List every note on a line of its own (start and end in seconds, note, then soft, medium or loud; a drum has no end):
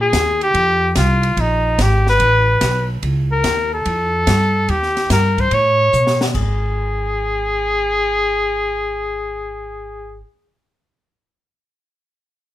0.00 0.11 A#2 medium
0.00 0.39 G#4 medium
0.13 0.53 D#2 medium
0.13 kick soft
0.13 snare medium
0.13 hi-hat pedal medium
0.13 ride medium
0.41 0.93 G4 loud
0.41 ride soft
0.54 0.94 F2 medium
0.54 kick soft
0.54 ride medium
0.95 1.36 C2 medium
0.95 1.42 F4 medium
0.95 kick soft
0.95 snare medium
0.95 hi-hat pedal soft
0.95 ride medium
1.23 ride soft
1.37 1.77 A#1 medium
1.37 1.83 D#4 medium
1.37 kick soft
1.37 ride medium
1.78 2.19 G#1 medium
1.78 2.08 G4 medium
1.78 kick soft
1.78 snare medium
1.78 hi-hat pedal soft
1.78 ride medium
2.07 2.87 B4 loud
2.07 snare soft
2.20 2.60 A1 medium
2.20 kick soft
2.20 ride medium
2.61 3.02 B1 medium
2.61 kick soft
2.61 snare medium
2.61 hi-hat pedal medium
2.61 ride medium
3.03 3.43 C#2 medium
3.03 kick soft
3.03 ride medium
3.32 3.70 A#4 medium
3.44 3.84 D#2 medium
3.44 kick soft
3.44 snare medium
3.44 hi-hat pedal soft
3.44 ride medium
3.74 4.71 A4 medium
3.85 4.26 F2 medium
3.85 kick soft
3.85 ride medium
4.27 4.67 G2 medium
4.27 kick soft
4.27 snare medium
4.27 hi-hat pedal medium
4.27 ride medium
4.68 5.09 D#2 medium
4.68 5.11 G4 medium
4.68 kick soft
4.68 ride medium
4.83 snare soft
4.97 snare soft
4.97 ride soft
5.10 5.50 G2 medium
5.10 5.42 A#4 medium
5.10 kick soft
5.10 snare medium
5.10 hi-hat pedal medium
5.10 ride medium
5.38 5.55 C5 medium
5.38 kick medium
5.38 ride soft
5.51 5.92 A2 medium
5.51 6.22 C#5 medium
5.51 kick soft
5.51 ride medium
5.93 6.33 B2 medium
5.93 hi-hat pedal medium
6.07 snare medium
6.21 snare medium
6.35 10.21 G#1 medium
6.35 10.21 G#4 medium
6.35 kick soft
6.35 crash medium